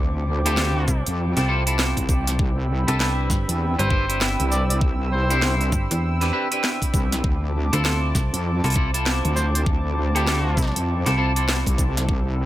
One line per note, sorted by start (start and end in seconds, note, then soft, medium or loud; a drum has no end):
0.00 0.86 D2 loud
0.00 0.41 C4 medium
0.00 7.20 C4 medium
0.00 0.41 E4 medium
0.00 0.41 F4 medium
0.00 0.41 A4 medium
0.00 7.21 G5 medium
0.00 2.36 D6 medium
0.45 1.32 C4 medium
0.45 1.32 E4 medium
0.45 1.32 F4 medium
0.45 1.06 G4 loud
0.45 1.32 A4 loud
0.45 closed hi-hat medium
0.57 snare loud
0.88 1.03 C2 loud
0.88 kick loud
0.88 shaker medium
1.07 1.34 F2 loud
1.07 closed hi-hat medium
1.36 1.94 C2 medium
1.36 1.47 C4 medium
1.36 1.47 E4 medium
1.36 1.47 F4 medium
1.36 1.47 A4 medium
1.36 snare soft
1.36 closed hi-hat medium
1.48 1.63 C4 medium
1.48 1.63 E4 loud
1.48 1.63 F4 medium
1.48 1.63 A4 loud
1.66 2.38 C4 medium
1.66 2.38 E4 medium
1.66 2.38 F4 medium
1.66 2.38 A4 medium
1.66 closed hi-hat medium
1.79 snare loud
1.97 2.37 C2 loud
1.97 kick medium
1.97 closed hi-hat medium
2.09 kick loud
2.09 shaker medium
2.27 snare medium
2.27 closed hi-hat medium
2.39 2.85 C2 loud
2.39 7.20 B5 medium
2.39 7.20 E6 medium
2.39 kick loud
2.88 3.28 C2 medium
2.88 3.75 D4 loud
2.88 3.75 E4 loud
2.88 3.75 G4 medium
2.88 2.96 A4 medium
2.88 3.74 B4 loud
2.88 closed hi-hat medium
3.00 3.12 A4 medium
3.00 snare loud
3.30 3.45 G1 medium
3.30 kick loud
3.30 snare medium
3.30 shaker medium
3.48 3.76 E2 loud
3.48 closed hi-hat medium
3.78 4.37 G1 loud
3.78 3.89 D4 medium
3.78 3.89 E4 medium
3.78 3.89 G4 medium
3.78 3.89 B4 medium
3.78 4.21 C5 loud
3.78 closed hi-hat medium
3.90 4.05 D4 medium
3.90 4.05 E4 medium
3.90 4.05 G4 medium
3.90 4.05 B4 loud
3.90 kick loud
4.08 5.26 D4 medium
4.08 5.26 E4 medium
4.08 5.26 G4 medium
4.08 5.26 B4 medium
4.08 closed hi-hat medium
4.21 snare loud
4.39 4.80 C2 loud
4.39 closed hi-hat medium
4.51 4.63 D5 medium
4.51 snare soft
4.51 shaker medium
4.70 4.77 D5 medium
4.70 closed hi-hat medium
4.81 5.71 C2 loud
4.81 kick loud
5.13 5.61 C5 medium
5.30 6.17 D4 medium
5.30 6.17 E4 medium
5.30 6.17 G4 medium
5.30 6.17 C5 loud
5.30 closed hi-hat medium
5.42 snare loud
5.61 closed hi-hat soft
5.72 5.88 G1 medium
5.72 kick loud
5.72 shaker medium
5.91 6.31 E2 loud
5.91 closed hi-hat medium
6.21 6.31 D4 medium
6.21 6.31 E4 medium
6.21 6.31 G4 medium
6.21 6.31 B4 medium
6.21 snare soft
6.21 closed hi-hat soft
6.33 6.47 D4 medium
6.33 6.47 E4 medium
6.33 6.47 G4 medium
6.33 6.47 B4 loud
6.51 7.23 D4 medium
6.51 7.23 E4 medium
6.51 7.23 G4 medium
6.51 7.23 B4 medium
6.51 closed hi-hat medium
6.64 snare loud
6.82 kick medium
6.82 closed hi-hat medium
6.94 7.22 C2 loud
6.94 kick loud
6.94 shaker medium
7.12 snare medium
7.12 closed hi-hat medium
7.24 7.70 D2 loud
7.24 12.46 C4 medium
7.24 12.05 A5 medium
7.24 12.05 D6 medium
7.24 kick loud
7.73 8.13 D2 loud
7.73 8.59 C4 medium
7.73 8.59 E4 medium
7.73 8.59 F4 medium
7.73 8.60 A4 loud
7.73 7.81 A4 medium
7.73 closed hi-hat medium
7.85 7.97 A4 medium
7.85 snare loud
8.15 8.31 C2 medium
8.15 kick loud
8.15 snare medium
8.15 shaker medium
8.33 8.61 F2 loud
8.33 closed hi-hat medium
8.64 9.22 C2 medium
8.64 8.74 C4 medium
8.64 8.74 E4 medium
8.64 8.74 F4 medium
8.64 8.74 A4 medium
8.64 closed hi-hat soft
8.66 closed hi-hat soft
8.70 closed hi-hat soft
8.72 closed hi-hat soft
8.74 8.90 C4 medium
8.74 8.90 E4 medium
8.74 8.90 F4 medium
8.74 8.90 A4 loud
8.74 kick loud
8.74 closed hi-hat soft
8.94 10.11 C4 medium
8.94 10.11 E4 medium
8.94 10.11 F4 medium
8.94 10.11 A4 medium
8.94 closed hi-hat medium
9.06 snare loud
9.24 9.65 D2 loud
9.24 closed hi-hat soft
9.36 9.48 C5 medium
9.36 snare soft
9.36 shaker medium
9.55 9.62 C5 medium
9.55 closed hi-hat medium
9.66 10.55 D2 loud
9.66 kick loud
10.15 11.02 C4 medium
10.15 11.02 E4 medium
10.15 11.02 F4 medium
10.15 10.76 G4 loud
10.15 11.02 A4 loud
10.15 closed hi-hat medium
10.27 snare loud
10.57 10.73 C2 medium
10.57 kick medium
10.57 shaker medium
10.62 snare soft
10.67 snare soft
10.72 snare soft
10.76 11.03 F2 loud
10.76 closed hi-hat medium
11.06 11.64 C2 loud
11.06 11.16 C4 medium
11.06 11.16 E4 medium
11.06 11.16 F4 medium
11.06 11.16 A4 medium
11.06 snare soft
11.06 closed hi-hat soft
11.17 11.32 C4 medium
11.17 11.32 E4 medium
11.17 11.32 F4 medium
11.17 11.32 A4 loud
11.36 12.08 C4 medium
11.36 12.08 E4 medium
11.36 12.08 F4 medium
11.36 12.08 A4 medium
11.36 closed hi-hat medium
11.49 snare loud
11.66 12.07 C2 loud
11.66 kick medium
11.66 closed hi-hat medium
11.78 kick loud
11.78 shaker medium
11.97 snare medium
11.97 closed hi-hat medium
12.08 12.46 C2 loud
12.08 12.46 G5 medium
12.08 12.46 B5 medium
12.08 12.46 E6 medium
12.08 kick loud